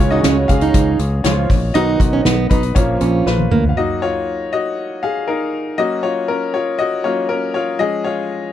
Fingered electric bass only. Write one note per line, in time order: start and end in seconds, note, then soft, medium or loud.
0.00 0.19 C#2 loud
0.24 0.45 C#2 medium
0.49 0.70 C#2 medium
0.74 0.95 C#2 loud
0.99 1.20 C#2 loud
1.24 1.45 C#2 loud
1.50 1.71 A#1 medium
1.75 1.96 B1 loud
2.00 2.21 B1 loud
2.26 2.46 B1 loud
2.51 2.71 B1 loud
2.76 2.97 A#1 medium
3.01 3.22 A#1 medium
3.26 3.47 A#1 medium
3.51 3.72 D2 medium